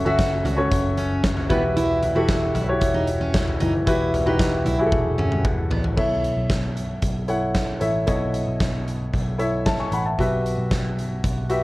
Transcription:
Already playing: C#4 F#4 A4 B4 E5
0.05 F#1 C#4 F#4 A4 E5
0.19 kick, snare, closed hi-hat
0.45 C#2 F#4, closed hi-hat, floor tom
0.57 C#4 F#4 A4 C#5
0.72 F#1, kick, closed hi-hat
0.97 C#4, closed hi-hat
1.24 kick, snare, closed hi-hat
1.37 floor tom
1.49 E1 E3 B3 E4 F#4 G4 B4, kick, closed hi-hat, floor tom
1.77 E4, closed hi-hat
2.03 closed hi-hat, floor tom
2.15 E1 E4 F#4 G4 A4
2.29 kick, snare, closed hi-hat
2.55 B1 E4, closed hi-hat, floor tom
2.68 E4 F#4 G4 C#5
2.81 E1, kick, closed hi-hat
2.94 D#4
3.07 closed hi-hat
3.21 C#4
3.34 kick, snare, closed hi-hat
3.48 floor tom
3.60 F#1 E3 D#4, closed hi-hat, floor tom
3.86 E1 E4 F#4 G4 B4, kick, closed hi-hat
4.14 closed hi-hat, floor tom
4.26 E1 D#4 E4 F#4 G4 B4
4.39 kick, snare, closed hi-hat
4.65 B1 E4, closed hi-hat, floor tom
4.79 E4 F#4 G4 G#4
4.86 A4
4.92 E1, kick, high tom
5.18 C#4, mid tom
5.32 mid tom
5.45 kick, mid tom
5.70 A1 B3, floor tom
5.84 floor tom
5.96 B1 B2 E4 A4 C#5 E5, kick, crash
6.24 closed hi-hat
6.37 B1
6.50 kick, snare, closed hi-hat
6.77 closed hi-hat
7.02 B1, kick, closed hi-hat
7.28 E4 A4 C#5 F#5, closed hi-hat
7.55 kick, snare, closed hi-hat
7.80 A1 E4 A4 C#5 E5, closed hi-hat
8.07 B1 B2 E4 A4 C#5 D#5, kick, closed hi-hat
8.34 closed hi-hat
8.48 B1
8.60 kick, snare, closed hi-hat
8.88 closed hi-hat
9.13 B1, kick, closed hi-hat
9.38 E4 A4 C#5 E5, closed hi-hat
9.66 E5 A5, kick, snare, closed hi-hat
9.80 G#5 C#6
9.92 A1 F#5 B5, closed hi-hat
10.06 E5 A5
10.19 B1 B2 F#4 G4 B4 E5, kick, closed hi-hat
10.46 closed hi-hat
10.58 B1
10.71 kick, snare, closed hi-hat
10.98 closed hi-hat
11.24 B1, kick, closed hi-hat
11.50 F#4 G4 B4 E5, closed hi-hat

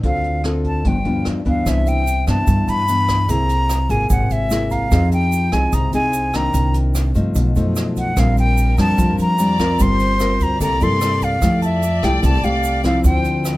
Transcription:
0.03 D2 D3 C4 F4 A4 F5, kick, closed hi-hat
0.24 closed hi-hat
0.44 C4 F4 A4, cross-stick, closed hi-hat
0.64 A5, kick, closed hi-hat
0.85 G1 G2 F3 B3 D4 G5, kick, closed hi-hat
1.05 D2 F3 B3 D4, closed hi-hat
1.25 E2, cross-stick, closed hi-hat
1.45 D2 E3 B3 D4 F5, kick, closed hi-hat
1.66 C2 C3 E5, kick, cross-stick, closed hi-hat, shaker
1.87 E5 G5, closed hi-hat, shaker
2.02 G5
2.07 closed hi-hat, shaker
2.27 G2 E3 B3 D4 A5, kick, cross-stick, closed hi-hat, shaker
2.47 G2, kick, closed hi-hat, shaker
2.68 G2 A5 B5, closed hi-hat, shaker
2.88 E3 B3 D4, closed hi-hat, shaker
3.08 kick, cross-stick, closed hi-hat, shaker
3.29 C2 C3 A#3 E4 G#4 A#5, kick, closed hi-hat, shaker
3.49 closed hi-hat, shaker
3.69 cross-stick, closed hi-hat, shaker
3.89 G#1 A#3 E4 G#4 G#5, kick, closed hi-hat, shaker
4.10 G#1 C3 F#5 G#5, kick, closed hi-hat, shaker
4.30 G#1 E5, closed hi-hat, shaker
4.50 A#3 E4 G#4, cross-stick, closed hi-hat, shaker
4.71 F5 A#5, kick, closed hi-hat, shaker
4.91 F2 F3 C4 D#4 G#4, kick, cross-stick, closed hi-hat, shaker
5.12 G5, closed hi-hat, shaker
5.32 closed hi-hat, shaker
5.52 C2 C4 D#4 G#4 G#5, kick, cross-stick, closed hi-hat, shaker
5.72 C2 C3 A#5 D#6, kick, closed hi-hat, shaker
5.93 C2 C4 D#4 G#4 G#5, closed hi-hat, shaker
6.13 closed hi-hat, shaker
6.34 D#3 A#3 D4 A#5, kick, cross-stick, closed hi-hat, shaker
6.54 C2 C3, kick, closed hi-hat, shaker
6.74 closed hi-hat, shaker
6.95 cross-stick, closed hi-hat, shaker
7.14 G2 F3 A3 D#4, kick, closed hi-hat, shaker
7.35 B1 B2, kick, closed hi-hat, shaker
7.56 F#2 F3 A3 D#4, closed hi-hat, shaker
7.76 cross-stick, closed hi-hat, shaker
7.96 F#5, kick, closed hi-hat, shaker
8.17 A#1 A#2 G3 C4 D4 A#4 F5, kick, cross-stick, closed hi-hat, shaker
8.37 G5, closed hi-hat, shaker
8.57 closed hi-hat, shaker
8.77 F2 G3 C4 D4 A5, kick, cross-stick, closed hi-hat, shaker
8.98 F2 F3, kick, closed hi-hat, shaker
9.18 F2 A#5, closed hi-hat, shaker
9.38 G3 C4 D4 D5 A#5, closed hi-hat, shaker
9.59 C4 F4 A#4, kick, cross-stick, closed hi-hat, shaker
9.78 G1 G3 C5 C6, kick, closed hi-hat, shaker
10.00 closed hi-hat, shaker
10.19 C4 F4 A#4, cross-stick, closed hi-hat, shaker
10.40 D2 A#5, kick, closed hi-hat, shaker
10.60 C2 C3 A#3 E4 A4 D5 A#5, kick, closed hi-hat, shaker
10.81 G2 A#3 E4 A4 C6, closed hi-hat, shaker
11.01 A#3 E4 A4, cross-stick, closed hi-hat, shaker
11.22 F5, kick, closed hi-hat, shaker
11.42 F2 F3 A3 E4 G4 D5, kick, cross-stick, closed hi-hat, shaker
11.62 E5 A5, closed hi-hat, shaker
11.82 closed hi-hat, shaker
12.03 C2 A3 E4 G4 G5, kick, cross-stick, closed hi-hat, shaker
12.23 C2 C3 A5, kick, closed hi-hat, shaker
12.43 C2 A3 G4 F5, closed hi-hat, shaker
12.63 closed hi-hat, shaker
12.84 F3 C4 E4 F5, kick, cross-stick, closed hi-hat, shaker
13.04 D2 D3 C5 G5, kick, closed hi-hat, shaker
13.25 closed hi-hat, shaker
13.45 B4, cross-stick, closed hi-hat, shaker

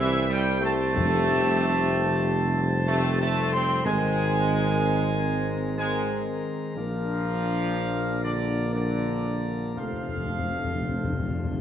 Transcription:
Already playing: C2 C3 E3 G3 C4 C5
0.00 C4 G4 E5
0.29 G3 G5
0.60 A3
0.65 A5
0.96 F1 F2 C4 G4
2.87 A3 C4 G4 A5
3.21 A3 A5
3.37 A4
3.52 C4 C6
3.85 G#1 D#3 G#3 C4 A#4 G#5
5.77 G#3 C4 A#4 G#5
6.76 A#1 F3 A#3 D4 A#4 F5
8.21 D3 D5
8.73 D3 D4 A#4 D5
9.76 F1 F2 F3 A3 C4 A4 C5 F5
9.84 F2
9.93 F2
10.00 F2
10.09 F2
10.17 F2
10.26 F2
10.32 F2
10.39 F2
10.48 F2
10.57 F2
10.64 F2
10.72 F2
10.81 F2
10.89 F2
10.97 F2
11.04 F2
11.12 F2
11.19 F2
11.28 F2
11.36 F2
11.44 F2
11.52 F2

